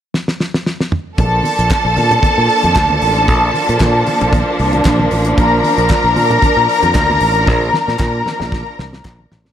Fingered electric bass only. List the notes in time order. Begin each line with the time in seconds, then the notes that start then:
1.19 A#1
1.59 A#1
1.85 A#1
1.97 A#2
2.38 A#2
2.64 F2
2.76 D2
3.02 A1
3.28 A#1
3.69 A#2
3.81 A#2
4.21 A#1
4.60 C2
4.86 A#1
5.12 A1
5.38 A#1
5.78 A#1
6.04 A#1
6.16 A#2
6.43 muted fingered electric bass stroke
6.56 A#2
6.83 F2
6.95 D2
7.21 A1
7.48 A#1
7.88 A#2
8.00 A#2
8.41 A#1
8.79 C2
9.05 A#1
9.31 A1